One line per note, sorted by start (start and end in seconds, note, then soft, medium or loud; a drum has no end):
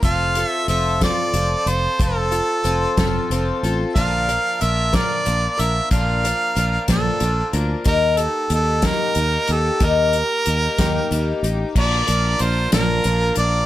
0.02 0.43 F1 medium
0.02 0.36 F3 medium
0.02 0.36 C4 medium
0.02 0.37 F4 medium
0.02 0.35 A4 medium
0.02 0.47 F5 loud
0.02 kick loud
0.02 closed hi-hat medium
0.35 0.67 C4 soft
0.35 0.68 F4 soft
0.35 0.69 A4 soft
0.35 closed hi-hat medium
0.47 0.65 E5 loud
0.68 1.09 F1 medium
0.68 1.02 F3 medium
0.68 1.01 C4 medium
0.68 1.02 F4 medium
0.68 1.00 A4 medium
0.68 0.99 E5 medium
0.68 closed hi-hat medium
1.01 1.32 F3 medium
1.01 1.33 C4 soft
1.01 1.35 F4 soft
1.01 1.34 A4 medium
1.01 1.70 D5 medium
1.01 kick medium
1.01 snare medium
1.01 closed hi-hat medium
1.33 1.54 F1 medium
1.33 1.67 F3 medium
1.33 1.67 C4 medium
1.33 1.67 F4 medium
1.33 1.66 A4 medium
1.33 closed hi-hat medium
1.66 1.87 F1 medium
1.66 1.98 C4 soft
1.66 1.99 F4 soft
1.66 1.99 A4 soft
1.66 2.01 C5 medium
1.66 closed hi-hat medium
1.99 2.40 F1 medium
1.99 2.32 F3 medium
1.99 2.32 C4 medium
1.99 2.30 F4 medium
1.99 2.30 A4 medium
1.99 3.61 A4 medium
1.99 kick loud
1.99 closed hi-hat medium
2.31 2.63 C4 soft
2.31 2.64 F4 soft
2.31 2.64 A4 soft
2.31 closed hi-hat medium
2.64 2.85 F1 medium
2.64 2.97 F3 medium
2.64 2.97 C4 medium
2.64 2.96 F4 medium
2.64 2.96 A4 medium
2.64 closed hi-hat soft
2.97 3.18 F1 medium
2.97 3.30 F3 medium
2.97 3.30 C4 medium
2.97 3.30 F4 medium
2.97 3.30 A4 medium
2.97 kick medium
2.97 snare medium
2.97 closed hi-hat medium
3.30 3.51 F1 medium
3.30 3.63 F3 medium
3.30 3.64 C4 medium
3.30 3.64 F4 medium
3.30 3.62 A4 medium
3.30 closed hi-hat soft
3.63 3.83 A1 medium
3.63 3.96 C4 soft
3.63 3.97 F4 soft
3.63 3.96 A4 medium
3.63 closed hi-hat soft
3.95 4.36 A#1 medium
3.95 4.28 A#2 medium
3.95 4.29 D3 medium
3.95 4.28 F3 medium
3.95 4.29 A#3 medium
3.95 4.28 D4 medium
3.95 4.27 A#4 medium
3.95 4.63 F5 loud
3.95 kick medium
3.95 closed hi-hat medium
4.29 4.59 F3 soft
4.29 4.61 A#3 soft
4.29 4.60 D4 soft
4.29 4.61 A#4 soft
4.29 closed hi-hat soft
4.61 5.02 A#1 medium
4.61 4.93 F3 medium
4.61 4.93 A#3 medium
4.61 4.93 D4 medium
4.61 4.91 A#4 medium
4.61 4.96 E5 medium
4.61 closed hi-hat medium
4.93 5.27 A#2 soft
4.93 5.27 D3 soft
4.93 5.24 F3 medium
4.93 5.25 A#3 medium
4.93 5.25 D4 medium
4.93 5.26 A#4 medium
4.93 5.62 D5 medium
4.93 kick medium
4.93 snare medium
4.93 closed hi-hat medium
5.25 5.47 A#1 medium
5.25 5.57 F3 medium
5.25 5.57 A#3 medium
5.25 5.56 D4 medium
5.25 5.56 A#4 medium
5.25 closed hi-hat medium
5.57 5.79 A#1 medium
5.57 5.91 F3 soft
5.57 5.90 A#3 soft
5.57 5.91 D4 soft
5.57 5.91 A#4 soft
5.57 5.91 E5 medium
5.57 closed hi-hat medium
5.91 6.32 A#1 medium
5.91 6.24 A#2 medium
5.91 6.24 D3 medium
5.91 6.24 F3 medium
5.91 6.24 A#3 medium
5.91 6.25 D4 medium
5.91 6.23 A#4 medium
5.91 6.85 F5 medium
5.91 kick medium
5.91 closed hi-hat medium
6.24 6.54 F3 soft
6.24 6.56 A#3 soft
6.24 6.57 D4 soft
6.24 6.57 A#4 soft
6.24 closed hi-hat medium
6.55 6.77 A#1 medium
6.55 6.88 F3 medium
6.55 6.88 A#3 medium
6.55 6.88 D4 medium
6.55 6.90 A#4 medium
6.55 closed hi-hat medium
6.88 7.09 A#1 medium
6.88 7.23 A#2 soft
6.88 7.22 D3 soft
6.88 7.22 F3 medium
6.88 7.22 A#3 medium
6.88 7.22 D4 medium
6.88 7.52 A4 medium
6.88 kick medium
6.88 snare medium
6.88 closed hi-hat medium
7.20 7.41 A#1 medium
7.20 7.53 F3 medium
7.20 7.53 A#3 medium
7.20 7.53 D4 medium
7.20 closed hi-hat medium
7.53 7.74 D2 medium
7.53 7.85 F3 soft
7.53 7.84 A#3 soft
7.53 7.85 D4 soft
7.53 7.85 A#4 medium
7.53 closed hi-hat medium
7.84 8.27 D#2 medium
7.84 8.18 D#3 medium
7.84 8.19 G3 medium
7.84 8.19 A#3 medium
7.84 8.18 D#4 medium
7.84 8.17 G4 medium
7.84 8.19 A#4 loud
7.84 kick medium
7.84 closed hi-hat medium
8.17 8.51 A#3 soft
8.17 8.51 D#4 soft
8.17 8.51 G4 soft
8.17 8.51 A4 medium
8.17 closed hi-hat soft
8.50 8.91 D#2 medium
8.50 8.83 G3 medium
8.50 8.83 A#3 medium
8.50 8.83 D#4 medium
8.50 8.82 G4 medium
8.50 closed hi-hat medium
8.55 8.88 A4 medium
8.82 9.17 D#3 soft
8.82 9.16 G3 medium
8.82 9.16 A#3 medium
8.82 9.17 D#4 medium
8.82 9.16 G4 medium
8.82 kick medium
8.82 snare medium
8.82 closed hi-hat medium
8.86 9.53 A#4 loud
9.15 9.36 D#2 medium
9.15 9.50 G3 soft
9.15 9.49 A#3 medium
9.15 9.50 D#4 medium
9.15 9.49 G4 medium
9.15 closed hi-hat medium
9.47 9.69 D#2 medium
9.47 9.82 G4 medium
9.47 closed hi-hat medium
9.52 9.80 A#3 soft
9.52 9.80 D#4 soft
9.52 9.86 A4 medium
9.80 10.22 D#2 medium
9.80 10.14 D#3 medium
9.80 10.14 G3 medium
9.80 10.14 A#3 medium
9.80 10.14 D#4 medium
9.80 10.14 G4 medium
9.80 kick loud
9.80 closed hi-hat medium
9.84 11.45 A#4 loud
10.13 10.46 A#3 soft
10.13 10.46 D#4 soft
10.13 10.47 G4 soft
10.13 closed hi-hat medium
10.46 10.67 D#2 medium
10.46 10.78 G3 medium
10.46 10.79 A#3 medium
10.46 10.77 D#4 medium
10.46 10.78 G4 medium
10.46 closed hi-hat medium
10.78 10.99 D#2 medium
10.78 11.12 D#3 medium
10.78 11.10 G3 medium
10.78 11.11 A#3 medium
10.78 11.11 D#4 medium
10.78 11.11 G4 medium
10.78 kick medium
10.78 snare medium
10.78 closed hi-hat medium
11.11 11.31 D#2 medium
11.11 11.44 G3 medium
11.11 11.44 A#3 medium
11.11 11.43 D#4 medium
11.11 11.42 G4 medium
11.11 closed hi-hat medium
11.43 11.63 A1 medium
11.43 11.75 A#3 soft
11.43 11.76 D#4 medium
11.43 11.76 G4 medium
11.43 closed hi-hat medium
11.75 12.01 A#1 medium
11.75 12.08 A#2 medium
11.75 12.09 D3 medium
11.75 13.66 F3 medium
11.75 12.07 F3 medium
11.75 12.07 A#3 medium
11.75 13.66 A#3 soft
11.75 13.66 D4 soft
11.75 12.06 D4 medium
11.75 13.66 A#4 medium
11.75 12.06 A#4 medium
11.75 12.43 D5 medium
11.75 kick loud
11.75 crash medium
12.07 12.34 A#1 medium
12.07 12.39 F3 soft
12.07 12.41 A#3 soft
12.07 12.40 D4 soft
12.07 12.40 A#4 soft
12.07 closed hi-hat medium
12.39 12.66 A#1 medium
12.39 12.73 F3 medium
12.39 12.72 A#3 medium
12.39 12.71 D4 medium
12.39 12.71 A#4 medium
12.39 12.72 C5 medium
12.39 closed hi-hat medium
12.72 12.99 A#1 medium
12.72 13.06 A#2 soft
12.72 13.06 D3 medium
12.72 13.04 F3 medium
12.72 13.03 A#3 medium
12.72 13.04 D4 medium
12.72 13.05 A#4 medium
12.72 13.34 A#4 medium
12.72 snare loud
12.72 closed hi-hat medium
13.04 13.31 A#1 medium
13.04 13.37 F3 medium
13.04 13.37 A#3 medium
13.04 13.37 D4 medium
13.04 13.36 A#4 medium
13.04 closed hi-hat medium
13.36 13.63 A#1 medium
13.36 13.66 F3 soft
13.36 13.66 A#3 soft
13.36 13.66 D4 soft
13.36 13.66 A#4 medium
13.36 13.66 D5 medium
13.36 closed hi-hat medium